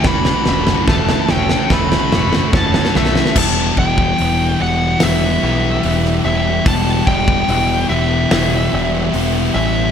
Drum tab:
CC |--------------------------------|x-------------------------------|--------------------------------|
HH |--------------------------------|--------o-------o-------o-------|o-------o-------o-------o-------|
SD |o-o-o-o-o-o-o-o-o-o-o-o-o-oooooo|----------------o---------o-----|----------------o---------------|
T2 |------o-------------o---o-------|--------------------------------|--------------------------------|
FT |o-o---o---o-o---o-o-o-----o-o---|--------------------------------|--------------------------------|
BD |o-------o-------o-------o-------|o---o-o-------------------------|o---o-o-------------------------|